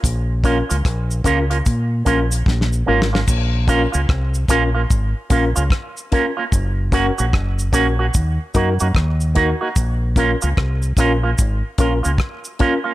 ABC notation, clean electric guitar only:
X:1
M:4/4
L:1/16
Q:"Swing 16ths" 1/4=74
K:Bbm
V:1 name="Clean electric guitar"
z2 [B,DF] [B,DF] z2 [B,DF] [B,DF] z2 [B,DF] z3 [B,DF] [B,DF] | z2 [B,DF] [B,DF] z2 [B,DF] [B,DF] z2 [B,DF] [B,DF] z2 [B,DF] [B,DF] | z2 [B,DG] [B,DG] z2 [B,DG] [B,DG] z2 [B,EG] [B,EG] z2 [B,EG] [B,EG] | z2 [B,DF] [B,DF] z2 [B,DF] [B,DF] z2 [B,DF] [B,DF] z2 [B,DF] [B,DF] |]